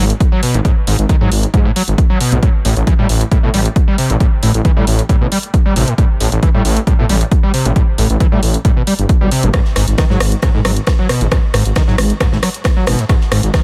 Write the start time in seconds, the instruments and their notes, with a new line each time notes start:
0.00 detuned saw bass G#1
0.10 closed hi-hat
0.20 kick, closed hi-hat
0.32 acid bass F#3
0.43 acid bass B2, open hi-hat
0.54 detuned saw bass G#1, acid bass G#2, closed hi-hat
0.65 acid bass G#2, kick, closed hi-hat
0.87 detuned saw bass G#1, acid bass G#2, open hi-hat
0.99 detuned saw bass G#1, closed hi-hat
1.09 acid bass D#3, kick, closed hi-hat
1.21 detuned saw bass G#2, acid bass F#3
1.32 detuned saw bass G#1, open hi-hat
1.43 closed hi-hat
1.54 detuned saw bass G#2, acid bass G#2, kick, closed hi-hat
1.65 acid bass A2
1.76 acid bass F#3, open hi-hat
1.88 detuned saw bass G#1, closed hi-hat
1.98 kick, closed hi-hat
2.10 acid bass F#3
2.20 acid bass B2, open hi-hat
2.32 detuned saw bass B1, acid bass G#2, closed hi-hat
2.43 acid bass A2, kick, closed hi-hat
2.65 detuned saw bass A1, acid bass A2, open hi-hat
2.77 detuned saw bass A1, closed hi-hat
2.87 acid bass E3, kick, closed hi-hat
2.99 detuned saw bass A2, acid bass G3
3.09 detuned saw bass A1, open hi-hat
3.21 closed hi-hat
3.31 acid bass A2, kick, closed hi-hat
3.43 detuned saw bass A2, acid bass B2
3.54 detuned saw bass A1, acid bass G3, open hi-hat
3.65 closed hi-hat
3.76 kick, closed hi-hat
3.88 acid bass G3
3.98 acid bass C3, open hi-hat
4.10 detuned saw bass A1, acid bass A2, closed hi-hat
4.20 acid bass A2, kick, closed hi-hat
4.43 detuned saw bass A1, acid bass A2, open hi-hat
4.54 detuned saw bass A1, closed hi-hat
4.65 acid bass E3, kick, closed hi-hat
4.77 detuned saw bass A2, acid bass G3
4.87 detuned saw bass A1, open hi-hat
4.99 closed hi-hat
5.09 acid bass A2, kick, closed hi-hat
5.21 detuned saw bass A1, acid bass B2
5.32 acid bass G3, open hi-hat
5.43 closed hi-hat
5.54 kick, closed hi-hat
5.66 acid bass G3
5.76 detuned saw bass A1, acid bass C3, open hi-hat
5.88 acid bass A2, closed hi-hat
5.98 acid bass A2, kick, closed hi-hat
6.20 detuned saw bass A1, acid bass A2, open hi-hat
6.32 detuned saw bass A1, closed hi-hat
6.43 acid bass E3, kick, closed hi-hat
6.54 detuned saw bass A2, acid bass G3
6.65 detuned saw bass A1, open hi-hat
6.77 closed hi-hat
6.87 acid bass A2, kick, closed hi-hat
6.99 detuned saw bass A2, acid bass B2
7.09 detuned saw bass A1, acid bass G3, open hi-hat
7.21 closed hi-hat
7.32 kick, closed hi-hat
7.43 acid bass G3
7.54 acid bass C3, open hi-hat
7.65 detuned saw bass A1, acid bass A2, closed hi-hat
7.76 acid bass A2, kick, closed hi-hat
7.98 detuned saw bass A1, acid bass A2, open hi-hat
8.10 detuned saw bass A1, closed hi-hat
8.20 acid bass E3, kick, closed hi-hat
8.32 detuned saw bass A2, acid bass G3
8.43 detuned saw bass A1, open hi-hat
8.54 closed hi-hat
8.65 acid bass A2, kick, closed hi-hat
8.77 acid bass B2
8.87 acid bass G3, open hi-hat
8.99 detuned saw bass G1, closed hi-hat
9.09 kick, closed hi-hat
9.21 detuned saw bass B1, acid bass G3
9.31 acid bass C3, open hi-hat
9.43 detuned saw bass G1, acid bass A2, closed hi-hat
9.53 acid bass G#2, kick, cross-stick, closed hi-hat, ride
9.65 snare
9.76 detuned saw bass G#1, acid bass G#2, cross-stick, snare, open hi-hat, ride
9.88 detuned saw bass G#1, closed hi-hat
9.98 acid bass D#3, kick, cross-stick, snare, closed hi-hat, ride
10.10 detuned saw bass G#2, acid bass F#3, snare
10.20 detuned saw bass G#1, cross-stick, open hi-hat, ride
10.32 closed hi-hat
10.42 acid bass G#2, kick, cross-stick, closed hi-hat, ride
10.54 detuned saw bass G#2, acid bass A2
10.65 detuned saw bass G#1, acid bass F#3, cross-stick, open hi-hat, ride
10.77 closed hi-hat
10.87 kick, cross-stick, snare, closed hi-hat, ride
10.99 acid bass F#3
11.09 acid bass B2, cross-stick, open hi-hat, ride
11.21 detuned saw bass G#1, acid bass G#2, closed hi-hat
11.31 acid bass G#2, kick, cross-stick, closed hi-hat, ride
11.54 detuned saw bass G#1, acid bass G#2, cross-stick, open hi-hat, ride
11.65 detuned saw bass G#1, closed hi-hat, ride
11.76 acid bass D#3, kick, cross-stick, snare, closed hi-hat, ride
11.87 detuned saw bass G#2, acid bass F#3, snare
11.98 detuned saw bass G#1, cross-stick, open hi-hat, ride
12.10 closed hi-hat
12.20 acid bass G#2, kick, cross-stick, closed hi-hat, ride
12.32 detuned saw bass G#1, acid bass A2, snare
12.42 acid bass F#3, cross-stick, open hi-hat, ride
12.54 closed hi-hat, ride
12.64 kick, cross-stick, snare, closed hi-hat, ride
12.77 acid bass F#3
12.87 detuned saw bass G#1, acid bass B2, cross-stick, open hi-hat, ride
12.98 acid bass G#2, snare, closed hi-hat
13.09 acid bass G#2, kick, cross-stick, closed hi-hat, ride
13.21 snare
13.31 detuned saw bass G#1, acid bass G#2, cross-stick, snare, open hi-hat, ride
13.43 detuned saw bass G#1, closed hi-hat
13.54 acid bass D#3, kick, cross-stick, snare, closed hi-hat, ride